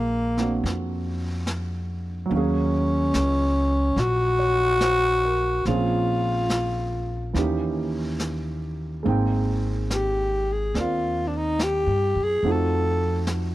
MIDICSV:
0, 0, Header, 1, 5, 480
1, 0, Start_track
1, 0, Tempo, 835655
1, 1325, Time_signature, 4, 2, 24, 8
1, 3249, Tempo, 846262
1, 7726, End_track
2, 0, Start_track
2, 0, Title_t, "Tenor saxophone"
2, 0, Program_c, 0, 66
2, 0, Note_on_c, 0, 58, 70
2, 384, Note_off_c, 0, 58, 0
2, 1352, Note_on_c, 0, 61, 80
2, 2298, Note_on_c, 0, 66, 108
2, 2306, Note_off_c, 0, 61, 0
2, 3255, Note_off_c, 0, 66, 0
2, 3257, Note_on_c, 0, 65, 78
2, 4190, Note_off_c, 0, 65, 0
2, 5674, Note_on_c, 0, 67, 68
2, 6010, Note_on_c, 0, 68, 73
2, 6019, Note_off_c, 0, 67, 0
2, 6148, Note_off_c, 0, 68, 0
2, 6167, Note_on_c, 0, 65, 68
2, 6435, Note_on_c, 0, 62, 47
2, 6443, Note_off_c, 0, 65, 0
2, 6487, Note_on_c, 0, 63, 74
2, 6495, Note_off_c, 0, 62, 0
2, 6638, Note_on_c, 0, 67, 81
2, 6647, Note_off_c, 0, 63, 0
2, 6980, Note_on_c, 0, 68, 85
2, 6988, Note_off_c, 0, 67, 0
2, 7138, Note_on_c, 0, 69, 83
2, 7146, Note_off_c, 0, 68, 0
2, 7591, Note_off_c, 0, 69, 0
2, 7726, End_track
3, 0, Start_track
3, 0, Title_t, "Grand piano"
3, 0, Program_c, 1, 0
3, 0, Control_c, 1, 64, 127
3, 0, Note_on_c, 1, 56, 49
3, 0, Note_on_c, 1, 58, 45
3, 0, Note_on_c, 1, 62, 40
3, 0, Note_on_c, 1, 65, 43
3, 0, Note_on_c, 1, 68, 56
3, 212, Note_off_c, 1, 58, 0
3, 220, Note_on_c, 1, 58, 36
3, 221, Note_on_c, 1, 60, 34
3, 223, Note_off_c, 1, 62, 0
3, 232, Note_on_c, 1, 62, 33
3, 233, Note_on_c, 1, 66, 41
3, 1296, Note_on_c, 1, 54, 56
3, 1308, Note_off_c, 1, 58, 0
3, 1316, Note_on_c, 1, 58, 52
3, 1326, Note_off_c, 1, 60, 0
3, 1328, Note_off_c, 1, 56, 0
3, 1330, Note_off_c, 1, 65, 0
3, 1330, Note_off_c, 1, 68, 0
3, 1330, Note_on_c, 1, 61, 48
3, 1331, Note_off_c, 1, 62, 0
3, 1332, Note_off_c, 1, 66, 0
3, 1333, Control_c, 1, 64, 0
3, 1345, Note_on_c, 1, 77, 50
3, 1363, Note_on_c, 1, 68, 56
3, 1440, Control_c, 1, 64, 127
3, 2523, Note_on_c, 1, 73, 42
3, 2766, Note_on_c, 1, 72, 44
3, 2862, Note_off_c, 1, 73, 0
3, 3016, Note_on_c, 1, 70, 47
3, 3150, Note_off_c, 1, 72, 0
3, 3234, Note_off_c, 1, 54, 0
3, 3245, Note_off_c, 1, 58, 0
3, 3251, Note_off_c, 1, 61, 0
3, 3255, Control_c, 1, 64, 0
3, 3258, Note_on_c, 1, 53, 44
3, 3259, Note_off_c, 1, 68, 0
3, 3259, Note_off_c, 1, 77, 0
3, 3259, Note_on_c, 1, 60, 40
3, 3261, Note_on_c, 1, 58, 42
3, 3262, Note_on_c, 1, 61, 48
3, 3267, Note_on_c, 1, 68, 53
3, 3350, Note_off_c, 1, 70, 0
3, 3352, Control_c, 1, 64, 127
3, 4200, Note_off_c, 1, 58, 0
3, 4201, Note_on_c, 1, 52, 46
3, 4207, Note_off_c, 1, 61, 0
3, 4209, Note_on_c, 1, 58, 46
3, 4213, Note_off_c, 1, 53, 0
3, 4214, Note_off_c, 1, 60, 0
3, 4214, Control_c, 1, 64, 0
3, 4215, Note_on_c, 1, 61, 45
3, 4218, Note_off_c, 1, 68, 0
3, 4223, Note_on_c, 1, 63, 43
3, 4230, Note_on_c, 1, 67, 56
3, 4322, Control_c, 1, 64, 127
3, 5162, Note_on_c, 1, 56, 48
3, 5166, Note_off_c, 1, 58, 0
3, 5171, Note_off_c, 1, 52, 0
3, 5174, Note_on_c, 1, 58, 50
3, 5175, Note_on_c, 1, 60, 49
3, 5176, Note_off_c, 1, 63, 0
3, 5178, Note_off_c, 1, 61, 0
3, 5181, Control_c, 1, 64, 0
3, 5185, Note_off_c, 1, 67, 0
3, 5185, Note_on_c, 1, 63, 42
3, 5193, Note_on_c, 1, 79, 63
3, 5279, Control_c, 1, 64, 127
3, 6131, Note_off_c, 1, 60, 0
3, 6140, Note_on_c, 1, 60, 36
3, 6144, Note_on_c, 1, 74, 35
3, 6157, Note_on_c, 1, 70, 42
3, 7088, Note_off_c, 1, 56, 0
3, 7093, Note_off_c, 1, 58, 0
3, 7093, Note_off_c, 1, 60, 0
3, 7096, Note_on_c, 1, 53, 49
3, 7097, Note_off_c, 1, 63, 0
3, 7097, Note_off_c, 1, 74, 0
3, 7097, Note_on_c, 1, 57, 43
3, 7101, Control_c, 1, 64, 0
3, 7102, Note_on_c, 1, 60, 45
3, 7103, Note_off_c, 1, 79, 0
3, 7104, Note_off_c, 1, 70, 0
3, 7105, Note_on_c, 1, 63, 45
3, 7105, Note_on_c, 1, 66, 55
3, 7199, Control_c, 1, 64, 127
3, 7726, Note_off_c, 1, 53, 0
3, 7726, Note_off_c, 1, 57, 0
3, 7726, Note_off_c, 1, 60, 0
3, 7726, Note_off_c, 1, 63, 0
3, 7726, Note_off_c, 1, 66, 0
3, 7726, End_track
4, 0, Start_track
4, 0, Title_t, "Upright bass"
4, 0, Program_c, 2, 32
4, 0, Note_on_c, 2, 34, 84
4, 345, Note_off_c, 2, 34, 0
4, 365, Note_on_c, 2, 41, 75
4, 1301, Note_off_c, 2, 41, 0
4, 1325, Note_on_c, 2, 39, 78
4, 1783, Note_off_c, 2, 39, 0
4, 1805, Note_on_c, 2, 37, 76
4, 2262, Note_off_c, 2, 37, 0
4, 2276, Note_on_c, 2, 34, 82
4, 3221, Note_off_c, 2, 34, 0
4, 3248, Note_on_c, 2, 34, 80
4, 4185, Note_off_c, 2, 34, 0
4, 4207, Note_on_c, 2, 39, 72
4, 5151, Note_off_c, 2, 39, 0
4, 5178, Note_on_c, 2, 32, 77
4, 6116, Note_off_c, 2, 32, 0
4, 6134, Note_on_c, 2, 39, 66
4, 6751, Note_off_c, 2, 39, 0
4, 6772, Note_on_c, 2, 43, 55
4, 6922, Note_off_c, 2, 43, 0
4, 6934, Note_on_c, 2, 42, 62
4, 7082, Note_off_c, 2, 42, 0
4, 7090, Note_on_c, 2, 41, 73
4, 7726, Note_off_c, 2, 41, 0
4, 7726, End_track
5, 0, Start_track
5, 0, Title_t, "Drums"
5, 214, Note_on_c, 9, 38, 24
5, 272, Note_off_c, 9, 38, 0
5, 376, Note_on_c, 9, 25, 38
5, 376, Note_on_c, 9, 38, 30
5, 433, Note_off_c, 9, 38, 0
5, 843, Note_on_c, 9, 38, 40
5, 843, Note_on_c, 9, 44, 46
5, 900, Note_off_c, 9, 38, 0
5, 900, Note_off_c, 9, 44, 0
5, 1320, Note_off_c, 9, 25, 0
5, 1320, Note_on_c, 9, 25, 37
5, 1803, Note_on_c, 9, 38, 46
5, 1803, Note_on_c, 9, 44, 59
5, 1860, Note_off_c, 9, 38, 0
5, 1860, Note_off_c, 9, 44, 0
5, 2282, Note_off_c, 9, 25, 0
5, 2282, Note_on_c, 9, 25, 31
5, 2282, Note_on_c, 9, 38, 29
5, 2340, Note_off_c, 9, 38, 0
5, 2760, Note_on_c, 9, 38, 41
5, 2760, Note_on_c, 9, 44, 54
5, 2817, Note_off_c, 9, 38, 0
5, 2817, Note_off_c, 9, 44, 0
5, 3246, Note_off_c, 9, 25, 0
5, 3246, Note_on_c, 9, 25, 29
5, 3246, Note_on_c, 9, 38, 26
5, 3303, Note_off_c, 9, 38, 0
5, 3725, Note_on_c, 9, 38, 45
5, 3725, Note_on_c, 9, 44, 59
5, 3782, Note_off_c, 9, 38, 0
5, 3782, Note_off_c, 9, 44, 0
5, 4211, Note_off_c, 9, 25, 0
5, 4211, Note_on_c, 9, 25, 34
5, 4211, Note_on_c, 9, 38, 30
5, 4267, Note_off_c, 9, 38, 0
5, 4688, Note_on_c, 9, 38, 35
5, 4688, Note_on_c, 9, 44, 47
5, 4745, Note_off_c, 9, 38, 0
5, 4745, Note_off_c, 9, 44, 0
5, 5174, Note_off_c, 9, 25, 0
5, 5174, Note_on_c, 9, 25, 38
5, 5658, Note_on_c, 9, 38, 43
5, 5658, Note_on_c, 9, 44, 53
5, 5715, Note_off_c, 9, 38, 0
5, 5715, Note_off_c, 9, 44, 0
5, 6138, Note_off_c, 9, 25, 0
5, 6138, Note_on_c, 9, 25, 34
5, 6138, Note_on_c, 9, 38, 29
5, 6195, Note_off_c, 9, 38, 0
5, 6616, Note_on_c, 9, 38, 41
5, 6616, Note_on_c, 9, 44, 52
5, 6673, Note_off_c, 9, 38, 0
5, 6673, Note_off_c, 9, 44, 0
5, 7091, Note_off_c, 9, 25, 0
5, 7091, Note_on_c, 9, 25, 32
5, 7566, Note_on_c, 9, 38, 45
5, 7566, Note_on_c, 9, 44, 50
5, 7623, Note_off_c, 9, 38, 0
5, 7623, Note_off_c, 9, 44, 0
5, 7726, Note_off_c, 9, 25, 0
5, 7726, End_track
0, 0, End_of_file